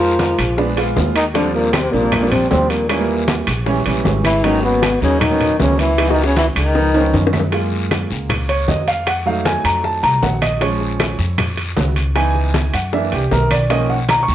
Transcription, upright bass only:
0.00 0.33 F2 medium
0.38 0.93 A#1 medium
0.97 1.87 D#2 medium
1.93 2.47 A#1 medium
2.51 3.41 D#2 loud
3.47 3.83 A#1 medium
3.86 4.04 A#1 medium
4.05 4.96 G#1 loud
5.02 5.56 D#2 medium
5.60 6.50 C#2 medium
6.56 7.10 C#2 medium
7.14 8.05 F#2 medium
8.10 8.65 C#2 medium
8.68 9.59 F2 medium
9.64 10.01 F2 medium
10.03 10.21 C2 medium
10.22 11.13 A#1 medium
11.19 11.73 F2 medium
11.77 12.68 C#2 medium
12.74 13.10 F#2 medium
13.12 13.31 C2 medium
13.32 14.23 B1 medium
14.28 14.35 D#2 medium

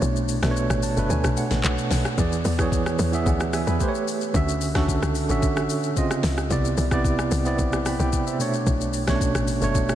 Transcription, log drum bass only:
0.02 0.41 B1 loud
0.43 0.69 B1 medium
0.70 0.96 A1 loud
0.97 1.09 F#1 medium
1.10 1.23 D2 loud
1.24 1.36 B1 medium
1.51 1.63 A1 medium
1.64 1.77 B1 loud
1.91 2.04 B1 loud
2.18 2.44 E2 loud
2.45 2.96 E2 loud
2.99 3.25 E2 loud
3.26 3.65 D2 loud
3.67 3.80 E2 medium
4.34 4.73 D2 loud
4.75 5.01 D2 medium
5.02 5.28 C#2 medium
5.29 5.68 A1 medium
6.24 6.49 C#2 loud
6.50 6.76 C2 loud
6.78 7.29 C2 loud
7.32 7.57 C2 loud
7.59 7.98 B1 loud
8.00 8.12 C2 loud
8.67 9.06 B1 loud
9.08 9.33 B1 medium
9.35 9.61 A1 medium
9.62 9.95 F#1 medium

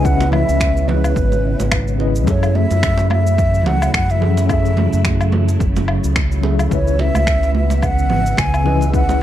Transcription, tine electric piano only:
0.00 1.98 C#3 medium
0.00 0.03 C#4 medium
0.00 1.96 C#4 medium
0.00 0.05 E4 medium
0.00 0.06 B4 medium
0.00 2.01 D#5 medium
0.05 1.96 E4 medium
0.05 1.97 B4 medium
0.05 1.98 E5 medium
1.98 2.23 C#3 medium
1.98 2.24 C#4 medium
1.98 2.24 E4 medium
1.98 2.25 B4 medium
1.98 2.25 D#5 medium
2.23 4.17 F#3 medium
2.23 4.18 C#4 medium
2.23 4.19 G#4 medium
2.29 4.20 A4 medium
2.29 4.21 E5 medium
4.20 4.44 F#3 medium
4.20 4.46 C#4 medium
4.20 4.46 G#4 medium
4.20 4.47 A4 medium
4.20 4.47 E5 medium
4.45 6.39 F#3 medium
4.45 6.40 C#4 medium
4.45 6.41 G#4 medium
4.51 6.42 A4 medium
4.51 6.43 E5 medium
6.42 6.68 F#3 medium
6.42 6.68 C#4 medium
6.42 6.69 G#4 medium
6.42 6.69 A4 medium
6.42 6.70 E5 medium
6.67 8.61 C#3 medium
6.67 8.62 C#4 medium
6.67 8.63 E4 medium
6.73 8.64 B4 medium
6.73 8.65 E5 medium
8.64 8.89 C#3 medium
8.64 8.90 C#4 medium
8.64 8.91 E4 medium
8.64 8.91 B4 medium
8.64 8.92 D#5 medium
8.90 9.23 C#3 medium
8.90 9.23 C#4 medium
8.90 9.23 E4 medium
8.95 9.23 B4 medium
8.95 9.23 E5 medium

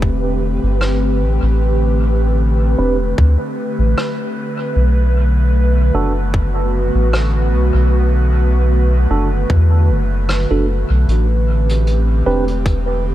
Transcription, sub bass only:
0.00 0.59 E1 medium
0.63 1.22 G1 medium
1.21 1.40 A1 medium
1.43 2.75 A1 medium
2.79 3.14 E1 medium
3.18 3.37 D2 medium
3.79 3.95 A1 loud
4.76 5.91 B1 medium
5.94 6.91 F#1 medium
6.95 7.54 A1 medium
7.52 7.71 B1 medium
7.74 9.07 B1 medium
9.10 9.46 F#1 medium
9.50 9.91 E2 medium
9.89 10.46 F#1 medium
10.51 10.85 F#1 loud
10.90 11.06 B1 medium
11.08 12.23 A1 loud
12.26 13.15 E1 medium

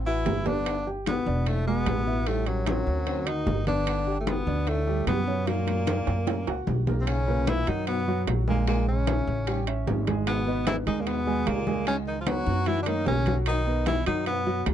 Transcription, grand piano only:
0.06 0.39 F#4 medium
0.06 0.39 F#5 medium
0.46 0.79 B3 medium
0.46 0.79 B4 medium
0.87 1.19 G4 medium
0.87 1.20 G5 medium
1.27 1.60 D4 medium
1.27 1.60 D5 medium
1.67 1.99 G#3 medium
1.67 2.00 G#4 medium
2.07 2.23 E4 medium
2.07 2.24 E5 medium
2.27 2.60 G3 medium
2.27 2.60 G4 medium
2.66 3.00 C4 medium
2.66 3.00 C5 medium
3.07 3.23 C4 medium
3.07 3.23 C5 medium
3.27 3.60 F#4 medium
3.27 3.60 F#5 medium
3.67 4.00 B3 medium
3.67 4.00 B4 medium
4.07 4.40 G4 medium
4.07 4.40 G5 medium
4.47 4.80 D4 medium
4.47 4.80 D5 medium
4.87 5.20 G3 medium
4.87 5.20 G4 medium
5.27 5.44 C#4 medium
5.27 5.44 C#5 medium
5.47 5.80 F#3 medium
5.47 5.80 F#4 medium
5.87 6.20 A#3 medium
5.87 6.20 A#4 medium
6.27 6.44 C#4 medium
6.27 6.44 C#5 medium
6.47 6.80 F#4 medium
6.47 6.81 F#5 medium
6.88 7.04 A#3 medium
6.88 7.04 A#4 medium
7.28 7.60 A#2 medium
7.28 7.61 A#4 medium
7.28 7.61 B4 medium
7.67 8.00 F#3 medium
7.67 8.00 F#4 medium
7.67 8.01 F#5 medium
8.08 8.41 F#3 medium
8.08 8.41 F#4 medium
8.08 8.41 F#5 medium
8.48 8.64 G#3 medium
8.48 8.64 G#4 medium
8.48 8.64 G#5 medium
8.68 9.00 G#3 medium
8.68 9.01 G#4 medium
8.68 9.01 G#5 medium
9.08 9.40 C#4 medium
9.08 9.40 C#5 medium
9.08 9.41 E5 medium
9.48 9.64 G3 medium
9.48 9.64 G4 medium
9.48 9.64 G5 medium
9.67 10.00 C#4 medium
9.67 10.00 C#5 medium
9.67 10.00 E5 medium
10.07 10.40 G#3 medium
10.07 10.40 G#4 medium
10.07 10.40 G#5 medium
10.47 10.80 B3 medium
10.47 10.80 B4 medium
10.47 10.80 D#5 medium
10.87 11.20 G#3 medium
10.87 11.20 G#4 medium
10.87 11.20 G#5 medium
11.27 11.60 G#3 medium
11.27 11.60 G#4 medium
11.27 11.60 G#5 medium
11.67 11.83 G#3 medium
11.67 11.84 G#4 medium
11.67 11.84 G#5 medium
11.87 12.20 G#3 medium
11.87 12.20 G#4 medium
11.87 12.20 G#5 medium
12.27 12.60 B3 medium
12.27 12.60 B4 medium
12.27 12.60 C#5 medium
12.67 12.83 F#3 medium
12.67 12.84 F#4 medium
12.67 12.84 F#5 medium
12.87 13.20 A#3 medium
12.87 13.20 A#4 medium
12.87 13.20 C#5 medium
13.27 13.60 F#3 medium
13.27 13.60 F#4 medium
13.27 13.60 F#5 medium
13.67 14.00 B3 medium
13.67 14.00 B4 medium
13.67 14.00 D#5 medium
14.06 14.39 F#3 medium
14.06 14.39 F#4 medium
14.06 14.40 F#5 medium
14.47 14.74 F#3 medium
14.47 14.74 F#4 medium
14.47 14.74 F#5 medium

